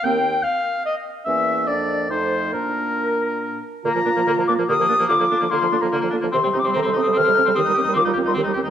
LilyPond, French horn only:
\new Staff \with { instrumentName = "French horn" } { \time 3/4 \key bes \major \tempo 4 = 145 bes8 r2 r8 | bes4 bes4 a4 | bes2~ bes8 r8 | f'2 g'4 |
f'4 f'2 | g'4 a'2 | g'4 f'4 g'4 | }